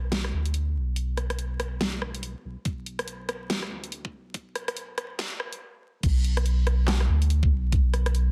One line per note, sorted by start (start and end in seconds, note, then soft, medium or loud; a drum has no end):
0.00 0.32 B1 loud
0.12 snare loud
0.12 closed hi-hat medium
0.24 cross-stick medium
0.33 0.77 D2 medium
0.46 closed hi-hat medium
0.54 closed hi-hat medium
0.75 2.34 B1 loud
0.96 closed hi-hat medium
1.17 cross-stick medium
1.17 closed hi-hat medium
1.30 cross-stick medium
1.30 closed hi-hat medium
1.39 closed hi-hat medium
1.60 cross-stick medium
1.60 closed hi-hat medium
1.81 snare loud
1.81 closed hi-hat medium
2.02 cross-stick medium
2.15 closed hi-hat medium
2.23 closed hi-hat medium
2.44 2.56 B1 loud
2.65 3.70 B1 loud
2.65 kick loud
2.65 closed hi-hat medium
2.86 closed hi-hat soft
2.99 cross-stick medium
2.99 closed hi-hat medium
3.08 closed hi-hat medium
3.29 cross-stick medium
3.29 closed hi-hat medium
3.50 snare loud
3.50 closed hi-hat medium
3.62 cross-stick medium
3.71 4.15 D2 loud
3.84 closed hi-hat medium
3.92 closed hi-hat medium
4.05 kick loud
4.13 5.61 B1 loud
4.34 kick loud
4.34 closed hi-hat medium
4.55 cross-stick medium
4.55 closed hi-hat soft
4.68 cross-stick medium
4.68 closed hi-hat medium
4.77 closed hi-hat medium
4.98 cross-stick medium
4.98 closed hi-hat medium
5.19 snare loud
5.19 closed hi-hat medium
5.40 cross-stick medium
5.53 closed hi-hat medium
6.03 7.08 B1 loud
6.03 kick loud
6.03 closed hi-hat medium
6.03 crash loud
6.24 closed hi-hat medium
6.37 cross-stick medium
6.37 closed hi-hat medium
6.46 closed hi-hat medium
6.67 cross-stick medium
6.67 closed hi-hat medium
6.88 snare loud
6.88 clap medium
6.88 closed hi-hat medium
7.00 cross-stick medium
7.09 7.53 D2 medium
7.22 closed hi-hat medium
7.30 closed hi-hat medium
7.43 kick loud
7.51 8.32 B1 loud
7.72 kick loud
7.72 closed hi-hat medium
7.94 cross-stick medium
7.94 closed hi-hat medium
8.06 cross-stick medium
8.06 closed hi-hat medium
8.15 closed hi-hat medium